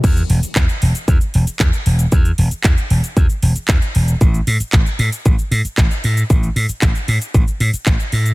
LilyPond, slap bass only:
\new Staff \with { instrumentName = "Slap bass" } { \clef bass \time 4/4 \key e \mixolydian \tempo 4 = 115 e,8 e,,8 e,8 e,,8 e,8 e,,8 e,8 e,,8 | e,8 e,,8 e,8 e,,8 e,8 e,,8 e,8 e,,8 | a,,8 a,8 a,,8 a,8 a,,8 a,8 a,,8 a,8 | a,,8 a,8 a,,8 a,8 a,,8 a,8 a,,8 a,8 | }